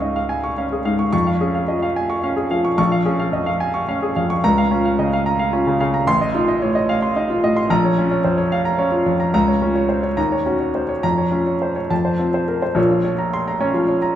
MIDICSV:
0, 0, Header, 1, 2, 480
1, 0, Start_track
1, 0, Tempo, 552995
1, 977, Time_signature, 6, 3, 24, 8
1, 4327, Tempo, 543971
1, 8167, Tempo, 572519
1, 11047, Tempo, 552995
1, 12247, End_track
2, 0, Start_track
2, 0, Title_t, "Grand piano"
2, 0, Program_c, 0, 0
2, 0, Control_c, 0, 64, 127
2, 0, Note_on_c, 0, 37, 67
2, 0, Note_on_c, 0, 61, 47
2, 0, Note_on_c, 0, 68, 54
2, 0, Note_on_c, 0, 77, 53
2, 0, Note_on_c, 0, 85, 81
2, 13, Note_on_c, 0, 75, 48
2, 15, Note_on_c, 0, 44, 47
2, 131, Note_off_c, 0, 75, 0
2, 138, Note_off_c, 0, 77, 0
2, 138, Note_on_c, 0, 77, 59
2, 156, Note_off_c, 0, 61, 0
2, 254, Note_on_c, 0, 80, 58
2, 326, Note_off_c, 0, 77, 0
2, 378, Note_off_c, 0, 85, 0
2, 378, Note_on_c, 0, 85, 58
2, 397, Note_off_c, 0, 44, 0
2, 444, Note_off_c, 0, 80, 0
2, 501, Note_on_c, 0, 77, 51
2, 502, Note_on_c, 0, 61, 50
2, 567, Note_off_c, 0, 85, 0
2, 628, Note_off_c, 0, 68, 0
2, 628, Note_on_c, 0, 68, 53
2, 690, Note_off_c, 0, 77, 0
2, 740, Note_on_c, 0, 77, 65
2, 741, Note_on_c, 0, 44, 59
2, 815, Note_off_c, 0, 68, 0
2, 859, Note_on_c, 0, 85, 58
2, 885, Note_off_c, 0, 61, 0
2, 931, Note_off_c, 0, 77, 0
2, 945, Note_off_c, 0, 37, 0
2, 964, Note_off_c, 0, 85, 0
2, 977, Note_on_c, 0, 85, 84
2, 979, Note_on_c, 0, 41, 68
2, 980, Note_off_c, 0, 44, 0
2, 995, Control_c, 0, 64, 0
2, 1101, Note_on_c, 0, 77, 61
2, 1128, Control_c, 0, 64, 127
2, 1170, Note_off_c, 0, 85, 0
2, 1222, Note_on_c, 0, 68, 55
2, 1224, Note_on_c, 0, 61, 52
2, 1292, Note_off_c, 0, 77, 0
2, 1342, Note_on_c, 0, 77, 52
2, 1412, Note_off_c, 0, 68, 0
2, 1458, Note_on_c, 0, 53, 54
2, 1459, Note_on_c, 0, 75, 52
2, 1531, Note_off_c, 0, 77, 0
2, 1578, Note_off_c, 0, 75, 0
2, 1583, Note_on_c, 0, 77, 63
2, 1604, Note_off_c, 0, 61, 0
2, 1704, Note_on_c, 0, 80, 63
2, 1772, Note_off_c, 0, 77, 0
2, 1819, Note_on_c, 0, 85, 63
2, 1841, Note_off_c, 0, 53, 0
2, 1893, Note_off_c, 0, 80, 0
2, 1940, Note_on_c, 0, 77, 59
2, 1942, Note_on_c, 0, 61, 57
2, 2009, Note_off_c, 0, 85, 0
2, 2053, Note_on_c, 0, 68, 58
2, 2129, Note_off_c, 0, 77, 0
2, 2176, Note_on_c, 0, 53, 59
2, 2176, Note_on_c, 0, 77, 66
2, 2245, Note_off_c, 0, 68, 0
2, 2296, Note_on_c, 0, 85, 62
2, 2321, Note_off_c, 0, 61, 0
2, 2366, Note_off_c, 0, 77, 0
2, 2380, Note_off_c, 0, 41, 0
2, 2400, Note_off_c, 0, 85, 0
2, 2413, Note_on_c, 0, 85, 88
2, 2414, Note_off_c, 0, 53, 0
2, 2414, Note_on_c, 0, 34, 70
2, 2431, Control_c, 0, 64, 0
2, 2533, Note_on_c, 0, 77, 65
2, 2584, Control_c, 0, 64, 127
2, 2604, Note_off_c, 0, 85, 0
2, 2651, Note_on_c, 0, 61, 59
2, 2651, Note_on_c, 0, 68, 57
2, 2724, Note_off_c, 0, 77, 0
2, 2772, Note_on_c, 0, 77, 62
2, 2844, Note_off_c, 0, 68, 0
2, 2888, Note_on_c, 0, 41, 53
2, 2889, Note_on_c, 0, 75, 53
2, 2964, Note_off_c, 0, 77, 0
2, 3006, Note_on_c, 0, 77, 66
2, 3010, Note_off_c, 0, 75, 0
2, 3035, Note_off_c, 0, 61, 0
2, 3128, Note_on_c, 0, 80, 67
2, 3201, Note_off_c, 0, 77, 0
2, 3245, Note_on_c, 0, 85, 64
2, 3273, Note_off_c, 0, 41, 0
2, 3321, Note_off_c, 0, 80, 0
2, 3372, Note_on_c, 0, 61, 55
2, 3373, Note_on_c, 0, 77, 62
2, 3440, Note_off_c, 0, 85, 0
2, 3494, Note_on_c, 0, 68, 61
2, 3563, Note_off_c, 0, 77, 0
2, 3612, Note_on_c, 0, 41, 61
2, 3612, Note_on_c, 0, 77, 64
2, 3683, Note_off_c, 0, 68, 0
2, 3733, Note_on_c, 0, 85, 73
2, 3754, Note_off_c, 0, 61, 0
2, 3802, Note_off_c, 0, 77, 0
2, 3815, Note_off_c, 0, 34, 0
2, 3850, Note_off_c, 0, 41, 0
2, 3851, Note_off_c, 0, 85, 0
2, 3853, Note_on_c, 0, 37, 78
2, 3853, Note_on_c, 0, 82, 92
2, 3864, Control_c, 0, 64, 0
2, 3975, Note_on_c, 0, 77, 68
2, 4004, Control_c, 0, 64, 127
2, 4042, Note_off_c, 0, 82, 0
2, 4089, Note_on_c, 0, 61, 60
2, 4091, Note_on_c, 0, 65, 60
2, 4162, Note_off_c, 0, 77, 0
2, 4211, Note_on_c, 0, 77, 64
2, 4279, Note_off_c, 0, 65, 0
2, 4329, Note_on_c, 0, 49, 55
2, 4330, Note_on_c, 0, 75, 57
2, 4400, Note_off_c, 0, 77, 0
2, 4448, Note_off_c, 0, 75, 0
2, 4458, Note_on_c, 0, 77, 68
2, 4470, Note_off_c, 0, 61, 0
2, 4570, Note_on_c, 0, 82, 75
2, 4642, Note_off_c, 0, 77, 0
2, 4687, Note_on_c, 0, 77, 68
2, 4709, Note_off_c, 0, 49, 0
2, 4757, Note_off_c, 0, 82, 0
2, 4806, Note_on_c, 0, 65, 64
2, 4808, Note_on_c, 0, 61, 60
2, 4874, Note_off_c, 0, 77, 0
2, 4929, Note_on_c, 0, 49, 69
2, 4994, Note_off_c, 0, 65, 0
2, 5037, Note_off_c, 0, 49, 0
2, 5050, Note_on_c, 0, 77, 67
2, 5051, Note_on_c, 0, 49, 63
2, 5168, Note_on_c, 0, 82, 69
2, 5186, Note_off_c, 0, 61, 0
2, 5237, Note_off_c, 0, 77, 0
2, 5246, Note_off_c, 0, 37, 0
2, 5284, Note_off_c, 0, 82, 0
2, 5284, Note_on_c, 0, 33, 75
2, 5285, Note_off_c, 0, 49, 0
2, 5288, Note_on_c, 0, 84, 97
2, 5293, Control_c, 0, 64, 0
2, 5411, Note_on_c, 0, 75, 68
2, 5446, Control_c, 0, 64, 127
2, 5476, Note_off_c, 0, 84, 0
2, 5527, Note_on_c, 0, 63, 61
2, 5527, Note_on_c, 0, 65, 70
2, 5596, Note_off_c, 0, 75, 0
2, 5648, Note_on_c, 0, 75, 66
2, 5714, Note_off_c, 0, 65, 0
2, 5768, Note_on_c, 0, 45, 57
2, 5770, Note_on_c, 0, 73, 61
2, 5835, Note_off_c, 0, 75, 0
2, 5884, Note_off_c, 0, 73, 0
2, 5885, Note_on_c, 0, 75, 69
2, 5906, Note_off_c, 0, 63, 0
2, 6009, Note_on_c, 0, 77, 73
2, 6074, Note_off_c, 0, 75, 0
2, 6126, Note_on_c, 0, 84, 68
2, 6149, Note_off_c, 0, 45, 0
2, 6197, Note_off_c, 0, 77, 0
2, 6248, Note_on_c, 0, 75, 64
2, 6250, Note_on_c, 0, 63, 55
2, 6316, Note_off_c, 0, 84, 0
2, 6369, Note_on_c, 0, 65, 66
2, 6437, Note_off_c, 0, 75, 0
2, 6491, Note_on_c, 0, 45, 63
2, 6491, Note_on_c, 0, 75, 72
2, 6557, Note_off_c, 0, 65, 0
2, 6604, Note_on_c, 0, 84, 69
2, 6630, Note_off_c, 0, 63, 0
2, 6678, Note_off_c, 0, 75, 0
2, 6688, Note_off_c, 0, 33, 0
2, 6722, Note_off_c, 0, 84, 0
2, 6725, Note_on_c, 0, 34, 78
2, 6726, Note_off_c, 0, 45, 0
2, 6726, Note_on_c, 0, 82, 88
2, 6735, Control_c, 0, 64, 0
2, 6850, Note_on_c, 0, 73, 62
2, 6903, Control_c, 0, 64, 127
2, 6915, Note_off_c, 0, 82, 0
2, 6972, Note_on_c, 0, 65, 63
2, 6973, Note_on_c, 0, 61, 59
2, 7038, Note_off_c, 0, 73, 0
2, 7087, Note_on_c, 0, 73, 64
2, 7158, Note_off_c, 0, 65, 0
2, 7203, Note_on_c, 0, 72, 54
2, 7204, Note_on_c, 0, 41, 56
2, 7276, Note_off_c, 0, 73, 0
2, 7322, Note_off_c, 0, 72, 0
2, 7322, Note_on_c, 0, 73, 65
2, 7351, Note_off_c, 0, 61, 0
2, 7446, Note_on_c, 0, 77, 71
2, 7513, Note_off_c, 0, 73, 0
2, 7563, Note_on_c, 0, 82, 69
2, 7586, Note_off_c, 0, 41, 0
2, 7635, Note_off_c, 0, 77, 0
2, 7680, Note_on_c, 0, 73, 59
2, 7681, Note_on_c, 0, 61, 55
2, 7754, Note_off_c, 0, 82, 0
2, 7798, Note_on_c, 0, 65, 61
2, 7873, Note_off_c, 0, 73, 0
2, 7923, Note_on_c, 0, 41, 62
2, 7924, Note_on_c, 0, 73, 64
2, 7993, Note_off_c, 0, 65, 0
2, 8045, Note_on_c, 0, 82, 68
2, 8067, Note_off_c, 0, 61, 0
2, 8117, Note_off_c, 0, 73, 0
2, 8131, Note_off_c, 0, 34, 0
2, 8157, Note_off_c, 0, 82, 0
2, 8165, Note_off_c, 0, 41, 0
2, 8169, Note_on_c, 0, 37, 77
2, 8170, Note_on_c, 0, 82, 88
2, 8180, Control_c, 0, 64, 0
2, 8286, Note_on_c, 0, 73, 60
2, 8302, Control_c, 0, 64, 127
2, 8353, Note_off_c, 0, 82, 0
2, 8403, Note_on_c, 0, 61, 55
2, 8403, Note_on_c, 0, 65, 59
2, 8469, Note_off_c, 0, 73, 0
2, 8517, Note_on_c, 0, 73, 58
2, 8587, Note_off_c, 0, 65, 0
2, 8630, Note_on_c, 0, 72, 50
2, 8704, Note_off_c, 0, 73, 0
2, 8749, Note_off_c, 0, 72, 0
2, 8749, Note_on_c, 0, 73, 60
2, 8777, Note_off_c, 0, 61, 0
2, 8850, Note_off_c, 0, 37, 0
2, 8866, Note_on_c, 0, 82, 77
2, 8867, Note_on_c, 0, 39, 71
2, 8868, Note_off_c, 0, 73, 0
2, 8881, Control_c, 0, 64, 0
2, 8991, Note_on_c, 0, 73, 59
2, 9019, Control_c, 0, 64, 127
2, 9058, Note_off_c, 0, 82, 0
2, 9109, Note_on_c, 0, 61, 50
2, 9110, Note_on_c, 0, 66, 57
2, 9180, Note_off_c, 0, 73, 0
2, 9229, Note_on_c, 0, 73, 55
2, 9300, Note_off_c, 0, 66, 0
2, 9351, Note_on_c, 0, 72, 49
2, 9420, Note_off_c, 0, 73, 0
2, 9467, Note_on_c, 0, 73, 58
2, 9469, Note_off_c, 0, 72, 0
2, 9493, Note_off_c, 0, 61, 0
2, 9566, Note_off_c, 0, 39, 0
2, 9588, Note_off_c, 0, 73, 0
2, 9589, Note_on_c, 0, 82, 86
2, 9591, Note_on_c, 0, 41, 67
2, 9605, Control_c, 0, 64, 0
2, 9711, Note_on_c, 0, 73, 56
2, 9758, Control_c, 0, 64, 127
2, 9783, Note_off_c, 0, 82, 0
2, 9827, Note_on_c, 0, 61, 49
2, 9829, Note_on_c, 0, 65, 54
2, 9905, Note_off_c, 0, 73, 0
2, 9950, Note_on_c, 0, 73, 49
2, 10025, Note_off_c, 0, 65, 0
2, 10079, Note_on_c, 0, 72, 45
2, 10147, Note_off_c, 0, 73, 0
2, 10197, Note_on_c, 0, 73, 58
2, 10199, Note_off_c, 0, 72, 0
2, 10220, Note_off_c, 0, 61, 0
2, 10298, Note_off_c, 0, 41, 0
2, 10319, Note_off_c, 0, 73, 0
2, 10319, Note_on_c, 0, 41, 65
2, 10320, Note_on_c, 0, 81, 71
2, 10335, Control_c, 0, 64, 0
2, 10440, Note_on_c, 0, 72, 54
2, 10496, Control_c, 0, 64, 127
2, 10514, Note_off_c, 0, 81, 0
2, 10562, Note_on_c, 0, 60, 46
2, 10563, Note_on_c, 0, 65, 50
2, 10635, Note_off_c, 0, 72, 0
2, 10686, Note_on_c, 0, 72, 56
2, 10757, Note_off_c, 0, 65, 0
2, 10803, Note_on_c, 0, 70, 53
2, 10879, Note_off_c, 0, 72, 0
2, 10923, Note_on_c, 0, 72, 61
2, 10925, Note_off_c, 0, 70, 0
2, 10950, Note_off_c, 0, 60, 0
2, 11023, Note_off_c, 0, 41, 0
2, 11028, Note_on_c, 0, 34, 72
2, 11037, Note_on_c, 0, 46, 72
2, 11039, Note_on_c, 0, 73, 64
2, 11043, Note_off_c, 0, 72, 0
2, 11062, Control_c, 0, 64, 0
2, 11166, Note_on_c, 0, 65, 58
2, 11231, Control_c, 0, 64, 127
2, 11236, Note_off_c, 0, 73, 0
2, 11283, Note_on_c, 0, 73, 61
2, 11361, Note_off_c, 0, 65, 0
2, 11405, Note_on_c, 0, 82, 57
2, 11479, Note_off_c, 0, 73, 0
2, 11536, Note_on_c, 0, 84, 67
2, 11600, Note_off_c, 0, 82, 0
2, 11653, Note_off_c, 0, 84, 0
2, 11659, Note_on_c, 0, 82, 65
2, 11770, Note_on_c, 0, 61, 66
2, 11770, Note_on_c, 0, 73, 69
2, 11846, Note_off_c, 0, 82, 0
2, 11888, Note_on_c, 0, 65, 61
2, 11890, Note_on_c, 0, 53, 59
2, 11961, Note_off_c, 0, 61, 0
2, 11961, Note_off_c, 0, 73, 0
2, 12011, Note_on_c, 0, 73, 60
2, 12078, Note_off_c, 0, 65, 0
2, 12080, Note_off_c, 0, 53, 0
2, 12131, Note_on_c, 0, 82, 62
2, 12199, Note_off_c, 0, 73, 0
2, 12247, Note_off_c, 0, 34, 0
2, 12247, Note_off_c, 0, 46, 0
2, 12247, Note_off_c, 0, 82, 0
2, 12247, End_track
0, 0, End_of_file